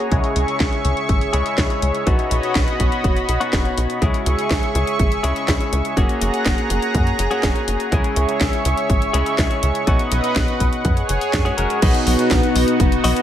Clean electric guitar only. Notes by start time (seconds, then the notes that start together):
0.11 C#3 G#3 C#4 E4 G#4
1.33 C#3 G#3 C#4 E4 G#4
2.06 B2 B3 C#4 D#4 F#4
3.40 B2 B3 C#4 D#4 F#4
4.01 C#3 G#3 C#4 E4 G#4
5.23 C#3 G#3 C#4 E4 G#4
5.96 A#3 C#4 F#4 G#4
7.31 A#3 C#4 F#4 G#4
7.91 C#3 G#3 C#4 E4 G#4
9.13 C#3 G#3 C#4 E4 G#4
9.86 B2 B3 C#4 D#4 F#4
11.45 G#3 C#4 F#4 G#4
11.57 G#3 C#4 F#4 A#4
11.82 B2 D#4 F#4 B4 D#5
13.04 B2 D#4 F#4 B4 D#5